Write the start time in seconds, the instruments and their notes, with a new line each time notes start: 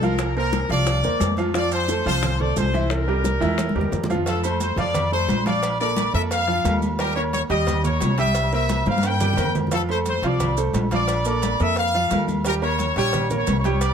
Already playing: upright bass C2
0.01 upright piano F3 F4 F5, trumpet section A#4, high bongo, high conga, maracas
0.19 high bongo, high timbale, maracas
0.36 upright piano A#3 A#4 C5, trumpet section A#4, high conga, high timbale
0.52 high bongo, high conga, high timbale, low timbale, maracas
0.69 upright bass C2, upright piano F3 F4 F5, trumpet section D5, high bongo, high conga, maracas
0.86 high bongo, high conga, high timbale, maracas
1.03 upright bass E2, upright piano A#3 A#4 C5, high bongo, high conga, maracas
1.20 upright bass F2, high bongo, low bongo, high conga, high timbale, low timbale, maracas
1.37 upright piano F3 F4 F5, high bongo, high conga, high timbale, maracas
1.54 upright piano F3 F4 F5, trumpet section D5, high bongo, high timbale, maracas
1.71 trumpet section C5, high conga, high timbale, maracas
1.88 upright piano A3 A4 C5, high bongo, high conga, low timbale, maracas
2.06 upright bass C2, upright piano F3 F4 F5, trumpet section C5, high bongo, high conga, high timbale, maracas
2.23 high bongo, high conga, low conga, high timbale, maracas
2.40 upright piano A3 A4 C5, trumpet section D5, high bongo, high conga, low conga
2.56 upright bass C2, trumpet section C5, high bongo, low bongo, high conga, high timbale, low timbale, maracas
2.74 upright piano E3 E4 E5, high bongo, high conga, maracas
2.90 trumpet section A#4, high bongo, high conga, high timbale, maracas
3.07 upright piano G3 G4 A#4, high conga, high timbale
3.24 high bongo, high conga, maracas
3.40 upright bass E2, upright piano E3 E4 E5, high bongo, low timbale, maracas
3.58 high bongo, high conga, maracas
3.69 high conga
3.75 upright bass E2, upright piano G3 G4 A#4, high bongo, low timbale
3.81 low conga
3.92 upright bass F2, high bongo, low bongo, low timbale, maracas
4.04 low conga
4.10 upright piano F3 F4 F5, high bongo, low timbale, maracas
4.15 low conga
4.26 upright piano F3 F4 F5, trumpet section A4, cowbell, low agogo, maracas
4.43 upright piano A3 A4 C5, trumpet section C5, high conga, low agogo, maracas
4.60 trumpet section C5, cowbell, high conga, low timbale, maracas
4.76 upright bass F2, upright piano F3 F4 F5, trumpet section D5, cowbell, high conga, maracas
4.94 cowbell, high conga, low conga, low agogo, maracas
5.11 upright piano A3 A4 C5, trumpet section C5, high conga
5.28 upright bass A#1, cowbell, high conga, low timbale, low agogo, maracas
5.46 upright piano F3 F4 F5, trumpet section D5, cowbell, high conga, maracas
5.63 cowbell, low agogo, maracas
5.80 upright piano A#3 A4 A#4, trumpet section D5, high conga, low agogo, maracas
5.96 cowbell, high conga, low timbale, low agogo, maracas
6.13 upright bass F2, upright piano A#3 A4 A#4, trumpet section E5, high conga, maracas
6.31 trumpet section F5, cowbell, high conga, low agogo, maracas
6.47 upright piano F3 F4 F5, high conga
6.64 upright bass D#2, upright piano A#3 A4 A#4, cowbell, high conga, low timbale, low agogo, maracas
6.82 high conga, low agogo, maracas
6.99 upright piano G3 G4 G5, trumpet section A#4, cowbell, low agogo, maracas
7.15 upright piano A#3 A#4 C#5, trumpet section C#5, high conga, low agogo
7.33 trumpet section C#5, cowbell, high conga, low timbale, maracas
7.49 upright bass D#2, upright piano G3 G4 G5, trumpet section D#5, cowbell, high conga, maracas
7.67 cowbell, high conga, low conga, low agogo, maracas
7.83 upright piano A#3 A#4 C#5, trumpet section C#5, high conga, low conga, maracas
8.00 upright bass C2, cowbell, high conga, low timbale, low agogo, maracas
8.18 upright piano G3 G4 G5, trumpet section E5, cowbell, high conga, maracas
8.34 cowbell, low agogo, maracas
8.52 upright piano A#3 A#4 C5, trumpet section E5, high conga, low agogo, maracas
8.69 cowbell, high conga, low timbale, low agogo, maracas
8.86 upright bass G2, upright piano A#3 A#4 C5, trumpet section F5, high conga, maracas
8.98 high conga
9.03 trumpet section G5, cowbell, high timbale, low agogo, maracas
9.20 upright piano G3 G4 G5, low conga, high timbale, maracas
9.33 low conga
9.37 upright bass F2, upright piano A#3 A#4 C5, cowbell, low agogo, maracas
9.44 low conga
9.55 low conga, low timbale, low agogo, maracas
9.67 low conga
9.71 upright piano F3 F4 F5, trumpet section A4, cowbell, high conga, low agogo, maracas
9.89 upright piano A3 A4 C5, trumpet section C5, high conga, low agogo
10.06 trumpet section C5, cowbell, high conga, low timbale, maracas
10.22 upright bass C2, upright piano F3 F4 F5, cowbell, high conga, maracas
10.26 trumpet section D5
10.40 cowbell, high conga, low conga, low agogo, maracas
10.57 upright piano A3 A4 C5, maracas
10.73 upright bass A#1, cowbell, high conga, low timbale, low agogo, maracas
10.91 upright piano F3 F4 F5, trumpet section D5, cowbell, high conga, maracas
11.08 cowbell, high conga, low agogo, maracas
11.25 upright piano A#3 A4 A#4, trumpet section D5, high conga, low agogo, maracas
11.42 cowbell, high conga, low timbale, low agogo, maracas
11.60 upright bass F2, upright piano A#3 A4 A#4, trumpet section E5, high conga, maracas
11.76 trumpet section F5, cowbell, high conga, low agogo, maracas
11.94 upright piano F3 F4 F5, high conga
12.11 upright bass D#2, upright piano A#3 A4 A#4, cowbell, high conga, low timbale, low agogo, maracas
12.28 high conga, low agogo, maracas
12.44 upright piano G3 G4 G5, trumpet section A#4, cowbell, low agogo, maracas
12.62 upright piano A#3 A#4 C#5, trumpet section C#5, high conga, low agogo
12.79 cowbell, high conga, low timbale, maracas
12.96 upright bass A#1, upright piano G3 G4 G5, trumpet section C#5, cowbell, high conga, maracas
13.13 cowbell, high conga, low conga, low agogo, maracas
13.30 upright piano A#3 A#4 C#5, high conga, low conga, maracas
13.37 trumpet section C#5
13.47 upright bass C2, cowbell, high conga, low timbale, low agogo, maracas
13.60 trumpet section C#5
13.64 upright piano G3 G4 G5, cowbell, high conga, maracas
13.81 trumpet section D5, cowbell, low agogo, maracas